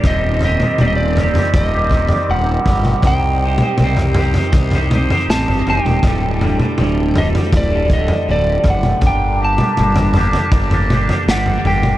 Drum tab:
SD |----------------|------------o---|----------------|------------o---|
T2 |---oo----------o|---oo-----o----o|---oo----------o|---oo-----o----o|
FT |o-o---ooo--o--o-|o----ooooo-o-oo-|o-o---ooo--o--o-|o----ooooo-o-oo-|
BD |o-------o-o---o-|o-------o-------|o-------o-o---o-|o-------o-------|